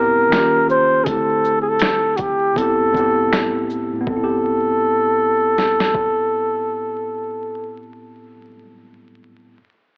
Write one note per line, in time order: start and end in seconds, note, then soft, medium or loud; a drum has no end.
0.00 0.34 A2 medium
0.00 0.33 B3 medium
0.00 0.34 C4 medium
0.00 0.34 E4 medium
0.00 0.34 G4 medium
0.00 0.70 A#4 loud
0.29 1.00 D#3 medium
0.29 1.01 A#3 medium
0.29 1.02 C#4 medium
0.29 finger snap medium
0.33 1.03 F4 medium
0.33 1.04 G4 medium
0.33 snare loud
0.33 closed hi-hat medium
0.70 1.06 C5 loud
0.70 shaker soft
1.04 2.45 D3 medium
1.04 2.46 A3 medium
1.04 2.47 C4 medium
1.04 1.10 G#4 medium
1.04 kick loud
1.04 closed hi-hat medium
1.08 2.48 E4 medium
1.08 2.49 G4 medium
1.08 1.59 A4 medium
1.45 shaker soft
1.62 1.71 G#4 medium
1.69 2.19 A4 medium
1.79 finger snap medium
1.79 snare loud
1.79 closed hi-hat medium
2.17 2.22 F#4 medium
2.17 2.59 G4 medium
2.17 kick medium
2.17 closed hi-hat soft
2.17 shaker soft
2.54 2.90 A2 medium
2.54 2.91 B3 medium
2.54 3.70 A4 loud
2.54 kick medium
2.58 2.92 C4 medium
2.58 2.93 E4 medium
2.58 2.94 G4 medium
2.58 closed hi-hat medium
2.91 3.91 A2 medium
2.91 3.99 B3 medium
2.91 kick medium
2.96 4.00 C4 medium
2.96 4.01 E4 medium
2.96 4.02 G4 medium
2.96 shaker soft
3.33 finger snap medium
3.33 snare loud
3.33 closed hi-hat medium
3.70 shaker soft
3.93 8.34 A2 medium
4.00 8.42 B3 medium
4.07 8.50 C4 medium
4.07 7.84 A4 medium
4.07 kick loud
4.16 8.58 E4 medium
4.24 8.61 G4 medium
5.58 snare medium
5.80 snare medium
5.94 kick medium